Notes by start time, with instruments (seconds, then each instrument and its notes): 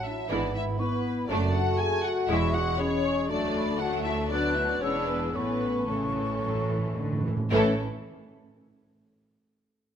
Already playing: bassoon F#3, flute A5
0.04 clarinet D4, french horn section E4, violin section E5
0.29 double bass section G#1, cello section G#2, viola section E3 G#3, bassoon B3, violin section B3 E4 D5, french horn section D4, clarinet E4, flute B5
0.54 french horn section E4, violin section E5
0.78 bassoon B3, french horn section B3, clarinet E4, violin section B4, flute C#6
1.04 flute B5
1.28 double bass section F#1, cello section F#2, viola section F#3 A3, bassoon A3, violin section A3 D4 D5, french horn section D4, clarinet F#4, flute A5
1.53 french horn section F#4, violin section F#5
1.79 french horn section G#4, violin section G#5
2.04 french horn section F#4, violin section F#5
2.29 double bass section E1, timpani E2, cello section E2, bassoon G#3, viola section G#3, violin section C#4 E4 E5, french horn section E4, clarinet G#4, flute C#6
2.54 french horn section F#4, violin section F#5
2.78 bassoon G#3, french horn section C#4, clarinet G#4, violin section C#5, flute B5
3.05 flute C#6
3.29 cello section D2, double bass section D2, viola section F#3 A3, violin section A3 D4 D5, bassoon A3, french horn section D4, clarinet F#4, flute A5
3.56 flute B5
3.79 viola section F#3 A3, bassoon A3, violin section A3 D4 F#5, clarinet F#4, french horn section F#4, flute A5
4.04 french horn section E4, violin section E5
4.29 viola section F#3, violin section B3 D4 D5, bassoon B3, french horn section D4, clarinet F#4, flute F#6
4.55 french horn section E4, violin section E5
4.67 french horn section D4, violin section D5
4.81 double bass section E1, cello section E2, viola section E3 G#3, violin section B3 D4 C#5, french horn section C#4, bassoon D4, clarinet G#4, flute E6
5.07 french horn section B3, violin section B4
5.33 double bass section A1, timpani A2, cello section A2, viola section E3 A3, french horn section B3, violin section C#4 B4, bassoon C#4, clarinet A4, flute C#6
5.43 timpani A2
5.58 timpani A2
5.66 timpani A2
5.75 timpani A2
5.82 timpani A2
5.88 timpani A2, cello section C#3, viola section E3 A3, french horn section A3, violin section C#4 A4, bassoon C#4, clarinet A4
5.99 timpani A2
6.07 timpani A2
6.14 timpani A2
6.22 timpani A2
6.30 timpani A2
6.38 timpani A2
6.43 cello section F#3
6.47 timpani A2
6.55 timpani A2
6.63 timpani A2
6.70 timpani A2, cello section E3
6.79 timpani A2
6.87 timpani A2
6.95 timpani A2, cello section D3
7.03 timpani A2
7.12 timpani A2
7.21 timpani A2, cello section E3
7.28 timpani A2
7.37 timpani A2
7.51 double bass section A1, cello section A2, timpani A2, viola section E3 A3, bassoon E3, french horn section A3, violin section C#4 E4 A4, clarinet A4, flute C#5